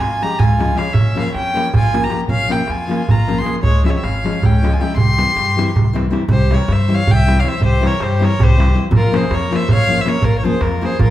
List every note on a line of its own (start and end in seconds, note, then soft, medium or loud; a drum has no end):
0.00 0.23 G#1 medium
0.00 0.24 F4 medium
0.00 0.24 G#5 loud
0.10 darbuka tek soft
0.21 0.32 F3 medium
0.21 0.32 G#3 medium
0.21 0.33 C#4 medium
0.21 0.33 F4 medium
0.21 0.42 G4 medium
0.21 0.40 A#5 loud
0.21 darbuka tek medium
0.39 0.72 C#2 medium
0.39 0.79 F4 medium
0.39 0.79 G#5 medium
0.39 darbuka dum loud
0.58 0.69 F3 medium
0.58 0.70 G#3 medium
0.58 0.70 C#4 medium
0.58 0.71 F4 medium
0.58 darbuka tek medium
0.70 darbuka tek soft
0.75 0.86 F3 medium
0.75 0.86 G#3 medium
0.75 0.87 C#4 medium
0.75 0.96 C#4 medium
0.75 0.87 F4 medium
0.75 0.95 F5 medium
0.79 darbuka tek medium
0.87 darbuka tek soft
0.93 1.18 A#1 medium
0.93 1.19 C#4 medium
0.93 1.20 E5 medium
0.93 darbuka dum loud
1.15 1.27 F3 medium
1.15 1.27 A#3 medium
1.15 1.27 C#4 medium
1.15 1.25 C#4 medium
1.15 1.27 F4 medium
1.15 1.22 F5 medium
1.15 darbuka tek medium
1.21 1.28 C4 medium
1.21 1.26 E5 medium
1.25 1.34 C#4 medium
1.25 1.34 F5 medium
1.25 darbuka tek soft
1.34 1.58 F2 medium
1.34 1.72 C#4 medium
1.34 1.72 G5 loud
1.34 darbuka tek medium
1.54 1.66 F3 medium
1.54 1.66 A#3 medium
1.54 1.67 C#4 medium
1.54 1.67 F4 medium
1.54 darbuka tek medium
1.74 2.07 A#1 medium
1.74 2.05 F4 medium
1.74 2.05 G#5 loud
1.74 darbuka dum loud
1.93 2.04 F3 medium
1.93 2.04 A#3 medium
1.93 2.05 C#4 medium
1.93 2.05 F4 medium
1.93 darbuka tek medium
2.03 2.20 G4 medium
2.03 2.20 A#5 medium
2.03 darbuka tek soft
2.09 2.21 F3 medium
2.09 2.22 A#3 medium
2.09 2.22 C#4 medium
2.09 2.22 F4 medium
2.09 darbuka tek medium
2.28 2.53 A#1 loud
2.28 2.52 C#4 medium
2.28 2.54 F5 loud
2.28 darbuka dum medium
2.47 2.60 F3 medium
2.47 2.61 A#3 medium
2.47 2.61 C#4 medium
2.47 2.71 E4 medium
2.47 2.61 F4 medium
2.47 darbuka tek medium
2.52 2.71 G5 medium
2.60 darbuka tek soft
2.68 2.93 F2 medium
2.68 3.10 F4 medium
2.68 3.12 G#5 medium
2.68 darbuka tek medium
2.87 3.00 F3 medium
2.87 3.01 A#3 medium
2.87 3.01 C#4 medium
2.87 3.01 F4 medium
2.87 darbuka tek medium
3.08 3.42 A#1 loud
3.08 3.42 F4 medium
3.08 3.40 A#5 medium
3.08 darbuka dum loud
3.27 3.39 F3 medium
3.27 3.39 A#3 medium
3.27 3.39 C#4 medium
3.27 3.40 F4 medium
3.27 darbuka tek medium
3.38 3.56 G#4 medium
3.38 3.55 C6 medium
3.38 darbuka tek soft
3.44 3.55 F3 medium
3.44 3.56 A#3 medium
3.44 3.56 C#4 soft
3.44 3.56 F4 medium
3.44 darbuka tek medium
3.63 3.87 C#2 medium
3.63 3.84 G#3 medium
3.63 3.84 C#5 medium
3.63 darbuka dum medium
3.83 3.95 F3 medium
3.83 3.95 G#3 medium
3.83 3.92 C4 medium
3.83 3.96 C#4 medium
3.83 3.96 F4 medium
3.83 3.91 E5 medium
3.83 darbuka tek medium
3.90 3.97 A#3 medium
3.90 3.99 C#5 medium
3.95 4.06 C4 medium
3.95 4.05 E5 medium
3.95 darbuka tek soft
4.03 4.27 G#1 medium
4.03 4.45 C#4 medium
4.03 4.47 F5 medium
4.03 darbuka tek medium
4.24 4.35 F3 medium
4.24 4.36 G#3 medium
4.24 4.36 C#4 medium
4.24 4.36 F4 medium
4.24 darbuka tek medium
4.42 4.75 C#2 loud
4.42 4.75 C#4 medium
4.42 4.75 G5 medium
4.42 darbuka dum loud
4.62 4.73 F3 medium
4.62 4.73 G#3 medium
4.62 4.74 C#4 medium
4.62 4.74 F4 medium
4.62 darbuka tek medium
4.73 4.85 F4 medium
4.73 4.83 G#5 medium
4.73 darbuka tek soft
4.80 4.90 F3 medium
4.80 4.90 G#3 medium
4.80 4.91 C#4 medium
4.80 4.98 E4 medium
4.80 4.91 F4 medium
4.80 4.96 G5 medium
4.80 darbuka tek medium
4.96 5.20 C2 loud
4.96 5.92 C6 loud
4.96 darbuka dum loud
5.00 5.94 G4 medium
5.18 5.29 E3 medium
5.18 5.29 G3 medium
5.18 5.30 C4 medium
5.18 5.30 E4 medium
5.18 darbuka tek medium
5.29 darbuka tek soft
5.36 5.60 G2 medium
5.36 darbuka tek medium
5.56 5.68 E3 medium
5.56 5.69 G3 medium
5.56 5.69 C4 medium
5.56 5.69 E4 medium
5.56 darbuka tek medium
5.67 darbuka tek soft
5.76 6.08 C2 loud
5.76 darbuka dum loud
5.87 darbuka tek soft
5.93 6.05 E3 medium
5.93 6.05 G3 medium
5.93 6.06 C4 medium
5.93 6.06 E4 medium
5.93 darbuka tek medium
6.10 6.22 E3 medium
6.10 6.22 G3 medium
6.10 6.22 C4 medium
6.10 6.23 E4 medium
6.10 darbuka tek medium
6.21 darbuka tek soft
6.28 6.52 C2 loud
6.28 6.58 G4 medium
6.28 6.55 C5 loud
6.28 darbuka dum medium
6.50 6.62 E3 medium
6.50 6.62 G3 medium
6.50 6.62 C4 medium
6.50 6.62 E4 medium
6.50 6.74 C#5 medium
6.50 darbuka tek medium
6.57 6.74 A#4 medium
6.57 darbuka tek soft
6.68 6.92 G2 loud
6.68 darbuka tek medium
6.72 6.96 C5 medium
6.72 6.96 E5 medium
6.80 darbuka tek soft
6.88 7.00 E3 medium
6.88 7.00 G3 medium
6.88 7.00 C4 medium
6.88 7.01 E4 medium
6.94 7.16 C#5 medium
6.94 7.12 F5 loud
7.07 7.39 C2 loud
7.07 7.41 G5 loud
7.07 darbuka dum loud
7.14 7.41 E5 loud
7.19 darbuka tek soft
7.27 7.37 E3 medium
7.27 7.38 G3 medium
7.27 7.38 C4 medium
7.27 7.38 E4 medium
7.27 darbuka tek medium
7.37 7.50 C#5 medium
7.37 7.50 F5 medium
7.37 darbuka tek soft
7.42 7.54 E3 medium
7.42 7.54 G3 medium
7.42 7.54 C4 medium
7.42 7.54 E4 medium
7.42 darbuka tek medium
7.48 7.63 C5 medium
7.48 7.63 E5 loud
7.60 7.84 C2 loud
7.60 7.87 G4 medium
7.60 darbuka dum medium
7.65 7.88 C5 loud
7.81 7.92 E3 medium
7.81 7.93 G3 medium
7.81 7.93 C4 medium
7.81 7.93 E4 medium
7.81 darbuka tek medium
7.85 8.05 A#4 medium
7.85 8.04 C#5 medium
7.91 darbuka tek soft
7.99 8.23 G2 medium
7.99 8.26 C5 medium
7.99 darbuka tek medium
8.03 8.26 G4 medium
8.12 darbuka tek soft
8.20 8.31 E3 medium
8.20 8.32 G3 medium
8.20 8.32 C4 medium
8.20 8.32 E4 medium
8.20 darbuka tek medium
8.24 8.42 A#4 medium
8.24 8.44 C#5 medium
8.39 8.71 C2 loud
8.39 8.80 G4 medium
8.39 8.81 C5 loud
8.39 darbuka dum loud
8.51 darbuka tek soft
8.56 8.68 E3 medium
8.56 8.68 G3 medium
8.56 8.68 C4 medium
8.56 8.68 E4 medium
8.60 darbuka tek medium
8.69 darbuka tek soft
8.74 8.85 E3 medium
8.74 8.85 G3 medium
8.74 8.85 C4 medium
8.74 8.86 E4 medium
8.91 9.15 A#1 loud
8.91 darbuka dum loud
8.96 9.19 F4 medium
8.96 9.17 A#4 loud
9.12 9.23 F3 medium
9.12 9.23 A#3 medium
9.12 9.24 C#4 medium
9.12 9.24 F4 medium
9.12 darbuka tek medium
9.16 9.36 G#4 medium
9.16 9.35 C5 medium
9.22 darbuka tek soft
9.31 9.54 F2 medium
9.31 9.56 A#4 medium
9.31 9.58 C#5 medium
9.31 darbuka tek medium
9.42 darbuka tek soft
9.51 9.62 F3 medium
9.51 9.63 A#3 medium
9.51 9.63 C#4 medium
9.51 9.63 F4 medium
9.51 9.70 C5 medium
9.51 darbuka tek medium
9.56 9.71 E5 medium
9.69 10.01 A#1 loud
9.69 10.00 C#5 loud
9.69 darbuka dum loud
9.74 10.03 F5 loud
9.79 darbuka tek soft
9.87 9.98 F3 medium
9.87 9.98 A#3 medium
9.87 9.99 C#4 medium
9.87 9.99 F4 medium
9.98 10.09 C5 medium
9.98 10.10 E5 medium
9.98 darbuka tek soft
10.05 10.15 F3 medium
10.05 10.16 A#3 medium
10.05 10.16 C#4 medium
10.05 10.16 F4 medium
10.05 10.25 A#4 medium
10.05 10.26 C#5 loud
10.05 darbuka tek medium
10.22 10.45 A#1 loud
10.22 10.39 F4 medium
10.22 10.38 A#4 loud
10.22 darbuka dum medium
10.34 darbuka tek soft
10.38 10.46 A#4 medium
10.38 10.45 C#5 medium
10.43 10.54 F3 medium
10.43 10.54 A#3 medium
10.43 10.54 C#4 medium
10.43 10.55 F4 medium
10.43 10.63 G#4 medium
10.43 10.63 C5 medium
10.61 10.84 F2 medium
10.61 10.85 F4 medium
10.61 10.87 A#4 medium
10.61 darbuka tek medium
10.72 darbuka tek soft
10.81 10.92 F3 medium
10.81 10.93 A#3 medium
10.81 10.92 C#4 medium
10.81 10.93 F4 medium
10.81 10.98 G#4 medium
10.81 darbuka tek medium
10.86 11.01 C5 medium
10.91 darbuka tek soft
10.99 11.10 A#1 loud
10.99 11.10 F4 medium
10.99 11.10 A#4 medium
10.99 darbuka dum loud